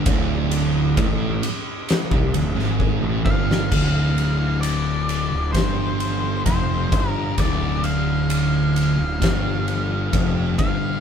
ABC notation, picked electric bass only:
X:1
M:4/4
L:1/16
Q:1/4=66
K:Dm
V:1 name="Picked electric bass" clef=bass
D,,,4 A,,,2 z3 C,, D,,, ^G,,,2 A,,, =G,,,2 | D,,,6- D,,, D,,, G,,,4 F,,,2 G,,,2 | D,,,6- D,,, D,,, G,,,4 F,,,2 G,,,2 |]